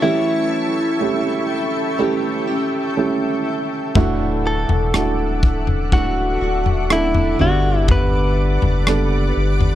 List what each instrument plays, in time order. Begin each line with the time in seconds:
Already playing: ambient pad A4 E5 C#6
0.01 steel-string acoustic guitar E3 A3 C#4 G4, upright piano E3 A3 C#4 E4 G4, clean electric guitar E4, ambient pad E4 G5
1.00 upright piano A3 C#4 E4 G4
1.98 steel-string acoustic guitar E3 A3 C#4 G4, upright piano A3 C#4 E4 G4
2.47 steel-string acoustic guitar A3 C#4 G4
2.97 upright piano A3 C#4 E4 G4
3.95 sub bass D1, upright piano A2 A3 D4 E4 F#4, steel-string acoustic guitar D3 E3 A3 D4 F#4, ambient pad F#5 D6, kick, floor tom
4.47 clean electric guitar A4
4.69 sub bass E1, floor tom
4.94 sub bass D1, upright piano A3 D4 E4 F#4, cross-stick
5.43 kick
5.67 floor tom
5.92 steel-string acoustic guitar E3 A3 D4 F#4, upright piano A3 D4 E4 F#4, clean electric guitar F#4, kick
6.41 sub bass D1, steel-string acoustic guitar A3 D4 F#4
6.66 floor tom
6.90 upright piano A3 D4 E4 A4, clean electric guitar E4, cross-stick
7.14 floor tom
7.39 sub bass G1, upright piano G2 D3 G3 B3 D4 F#4, steel-string acoustic guitar G3 B3 D4 F#4, clean electric guitar F#4, ambient pad B4 D5 F#5, floor tom
7.88 clean electric guitar B4, kick, floor tom
8.62 sub bass F#1, floor tom
8.87 upright piano G3 B3 D4 A4, cross-stick
9.37 sub bass G1
9.60 floor tom